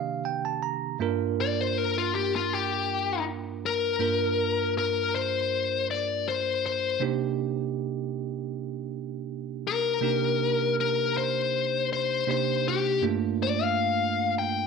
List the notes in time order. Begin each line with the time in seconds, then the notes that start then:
Already playing: C3 D#3 A#3 D4 G4 F5
0.25 G5
0.45 A5
0.63 A#5
0.99 G2 A#3 D4 F4 A#4
1.41 D5
1.61 C5
1.78 A#4
1.98 F4
2.15 G4
2.36 F4
2.53 G4
3.66 A#4
3.99 G2 A#3 D4 F4 A#4
4.78 A#4
5.15 C5
5.91 D5
6.28 C5
6.66 C5
7.00 C3 A#3 D4 D#4 G4
9.67 A#4
10.01 C3 A#3 D4 D#4 G4
10.81 A#4
11.18 C5
11.93 C5
12.27 C3 A#3 D4 D#4 G4 C5
12.68 G4
13.01 G2 A3 A#3 D4 F4
13.43 D5
13.63 F5
14.39 G5